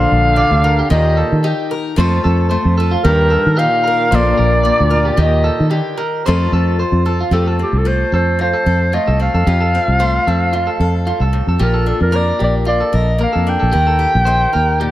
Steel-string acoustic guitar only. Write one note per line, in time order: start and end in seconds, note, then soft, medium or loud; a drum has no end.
0.00 0.36 A#2 medium
0.00 0.88 D4 medium
0.36 0.64 C3 medium
0.64 0.91 D3 medium
0.90 1.97 D#3 medium
0.90 1.95 G4 medium
1.44 1.95 D#4 medium
1.71 1.95 A#4 medium
1.96 3.04 F2 medium
1.96 2.49 A3 medium
1.96 3.02 C4 medium
1.96 2.80 F4 medium
1.96 3.03 A4 medium
2.51 3.01 A3 medium
2.80 3.05 F4 medium
3.05 4.12 D#3 medium
3.05 4.09 G4 medium
3.59 4.09 D#4 medium
3.87 4.10 A#4 medium
4.12 5.19 A#2 medium
4.12 4.64 A#3 medium
4.12 5.16 D4 medium
4.12 4.90 F4 medium
4.12 5.17 A4 medium
4.65 5.15 A#3 medium
4.91 5.18 F4 medium
5.17 5.96 D#3 medium
5.17 6.22 G4 medium
5.71 5.98 D3 medium
5.97 6.25 D#3 medium
6.26 7.30 F2 medium
6.26 6.80 A3 medium
6.26 7.30 C4 medium
6.26 7.04 F4 medium
6.26 7.31 A4 medium
7.06 7.29 F4 medium
7.31 8.38 F2 medium
7.31 7.85 A3 medium
7.31 7.59 C4 soft
7.31 9.48 F4 soft
7.59 9.19 C4 soft
7.85 8.92 A3 medium
7.85 8.65 A4 medium
8.39 9.46 F2 medium
8.66 9.44 A4 medium
8.93 9.43 A3 medium
9.20 9.43 C4 soft
9.47 10.52 F2 medium
9.47 11.58 F4 medium
9.75 10.27 C4 soft
10.00 11.58 A3 medium
10.00 10.79 A4 medium
10.28 11.58 C4 soft
10.53 11.06 F2 medium
10.80 11.58 A4 medium
11.07 11.32 G2 medium
11.33 11.60 A2 medium
11.59 12.67 A#2 medium
11.59 13.71 F4 medium
11.86 12.39 D4 soft
12.12 13.17 A#3 medium
12.12 12.91 A#4 medium
12.40 13.45 D4 soft
12.65 13.74 F2 medium
12.93 13.71 A#4 medium
13.18 13.70 A#3 medium
13.47 13.71 D4 medium
13.73 14.91 D#3 medium
13.73 14.26 A#4 medium
13.99 14.52 G4 medium
14.27 14.91 D#4 medium
14.27 muted steel-string acoustic guitar stroke medium
14.53 14.91 G4 soft
14.81 14.91 A#2 medium